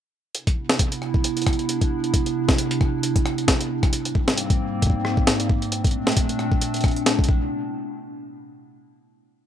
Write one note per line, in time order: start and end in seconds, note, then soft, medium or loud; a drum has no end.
0.34 3.89 C3 medium
0.34 3.89 B3 medium
0.34 3.89 D4 medium
0.34 3.89 E4 medium
0.34 closed hi-hat medium
0.47 kick loud
0.47 closed hi-hat medium
0.69 snare loud
0.79 kick loud
0.79 closed hi-hat medium
0.92 closed hi-hat medium
1.02 cross-stick soft
1.14 kick loud
1.24 closed hi-hat medium
1.37 closed hi-hat soft
1.42 closed hi-hat soft
1.46 kick loud
1.46 cross-stick medium
1.46 closed hi-hat soft
1.53 closed hi-hat soft
1.59 closed hi-hat soft
1.69 closed hi-hat medium
1.81 kick loud
1.81 closed hi-hat medium
2.04 closed hi-hat soft
2.14 kick loud
2.14 closed hi-hat medium
2.26 closed hi-hat medium
2.49 kick loud
2.49 snare loud
2.49 closed hi-hat soft
2.58 closed hi-hat medium
2.71 closed hi-hat medium
2.81 kick loud
2.81 cross-stick medium
3.03 closed hi-hat medium
3.16 kick loud
3.16 closed hi-hat medium
3.26 cross-stick medium
3.38 closed hi-hat soft
3.48 kick loud
3.48 snare loud
3.48 closed hi-hat medium
3.61 closed hi-hat medium
3.83 kick loud
3.83 cross-stick medium
3.83 closed hi-hat soft
3.93 5.70 G#2 medium
3.93 5.70 G3 medium
3.93 5.70 A#3 medium
3.93 5.70 C4 medium
3.93 closed hi-hat medium
4.05 closed hi-hat medium
4.15 kick loud
4.28 snare loud
4.28 closed hi-hat soft
4.38 closed hi-hat medium
4.50 kick loud
4.50 closed hi-hat medium
4.82 kick loud
4.82 closed hi-hat medium
4.87 kick medium
4.90 kick medium
5.05 cross-stick medium
5.17 kick loud
5.27 snare loud
5.27 closed hi-hat medium
5.40 closed hi-hat medium
5.50 kick loud
5.62 closed hi-hat soft
5.72 7.27 A#2 medium
5.72 7.27 A3 medium
5.72 7.27 C4 medium
5.72 7.27 D4 medium
5.72 closed hi-hat medium
5.84 kick loud
5.84 closed hi-hat medium
5.87 closed hi-hat soft
5.91 closed hi-hat soft
6.07 snare loud
6.12 closed hi-hat soft
6.17 kick loud
6.17 closed hi-hat medium
6.29 closed hi-hat soft
6.39 cross-stick soft
6.52 kick loud
6.61 closed hi-hat medium
6.74 closed hi-hat soft
6.76 closed hi-hat soft
6.81 kick loud
6.81 cross-stick medium
6.81 closed hi-hat soft
6.84 closed hi-hat soft
6.88 closed hi-hat soft
6.91 closed hi-hat soft
6.96 closed hi-hat soft
7.06 cross-stick medium
7.06 snare loud
7.06 closed hi-hat medium
7.19 kick loud
7.24 closed hi-hat medium
7.29 kick loud